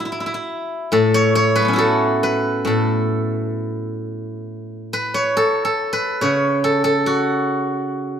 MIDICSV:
0, 0, Header, 1, 2, 480
1, 0, Start_track
1, 0, Tempo, 840336
1, 531, Time_signature, 2, 2, 24, 8
1, 1016, Tempo, 882353
1, 1976, Tempo, 911854
1, 2936, Tempo, 851064
1, 4533, End_track
2, 0, Start_track
2, 0, Title_t, "Guzheng"
2, 0, Program_c, 0, 107
2, 0, Note_on_c, 0, 64, 46
2, 0, Note_on_c, 0, 66, 59
2, 0, Note_on_c, 0, 69, 65
2, 0, Note_on_c, 0, 71, 63
2, 27, Note_off_c, 0, 64, 0
2, 29, Note_on_c, 0, 64, 44
2, 66, Note_off_c, 0, 64, 0
2, 68, Note_on_c, 0, 64, 47
2, 113, Note_off_c, 0, 64, 0
2, 116, Note_on_c, 0, 64, 43
2, 139, Note_off_c, 0, 71, 0
2, 147, Note_off_c, 0, 64, 0
2, 149, Note_on_c, 0, 64, 55
2, 192, Note_off_c, 0, 64, 0
2, 195, Note_on_c, 0, 64, 49
2, 350, Note_off_c, 0, 69, 0
2, 524, Note_on_c, 0, 45, 60
2, 528, Note_on_c, 0, 69, 78
2, 612, Note_off_c, 0, 66, 0
2, 653, Note_on_c, 0, 73, 90
2, 771, Note_off_c, 0, 73, 0
2, 773, Note_on_c, 0, 73, 90
2, 888, Note_on_c, 0, 71, 86
2, 906, Note_on_c, 0, 54, 32
2, 927, Note_on_c, 0, 57, 38
2, 942, Note_on_c, 0, 59, 43
2, 961, Note_on_c, 0, 61, 46
2, 987, Note_off_c, 0, 64, 0
2, 990, Note_on_c, 0, 64, 49
2, 1005, Note_on_c, 0, 66, 55
2, 1017, Note_off_c, 0, 69, 0
2, 1019, Note_on_c, 0, 69, 75
2, 1024, Note_off_c, 0, 54, 0
2, 1260, Note_off_c, 0, 71, 0
2, 1262, Note_on_c, 0, 71, 72
2, 1482, Note_off_c, 0, 45, 0
2, 1488, Note_on_c, 0, 45, 56
2, 1500, Note_off_c, 0, 69, 0
2, 1502, Note_on_c, 0, 69, 57
2, 1822, Note_off_c, 0, 73, 0
2, 2317, Note_off_c, 0, 66, 0
2, 2363, Note_off_c, 0, 71, 0
2, 2397, Note_off_c, 0, 64, 0
2, 2518, Note_off_c, 0, 61, 0
2, 2611, Note_off_c, 0, 59, 0
2, 2673, Note_off_c, 0, 69, 0
2, 2707, Note_on_c, 0, 71, 71
2, 2717, Note_off_c, 0, 57, 0
2, 2818, Note_on_c, 0, 73, 78
2, 2936, Note_off_c, 0, 45, 0
2, 2936, Note_on_c, 0, 69, 76
2, 3092, Note_off_c, 0, 69, 0
2, 3094, Note_on_c, 0, 69, 72
2, 3250, Note_off_c, 0, 71, 0
2, 3252, Note_on_c, 0, 71, 83
2, 3411, Note_off_c, 0, 73, 0
2, 3413, Note_on_c, 0, 73, 77
2, 3417, Note_on_c, 0, 49, 57
2, 3651, Note_off_c, 0, 69, 0
2, 3654, Note_on_c, 0, 69, 73
2, 3765, Note_off_c, 0, 69, 0
2, 3767, Note_on_c, 0, 69, 74
2, 3892, Note_on_c, 0, 66, 65
2, 4406, Note_off_c, 0, 71, 0
2, 4488, Note_off_c, 0, 73, 0
2, 4533, Note_off_c, 0, 49, 0
2, 4533, Note_off_c, 0, 66, 0
2, 4533, Note_off_c, 0, 69, 0
2, 4533, End_track
0, 0, End_of_file